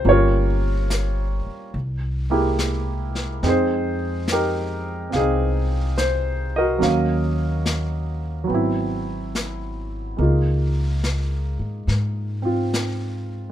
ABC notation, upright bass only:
X:1
M:4/4
L:1/8
Q:"Swing" 1/4=71
K:Fm
V:1 name="Upright bass" clef=bass
G,,,3 z C,,4 | F,,4 C,,4 | E,,4 A,,,4 | D,,3 A,, A,,4 |]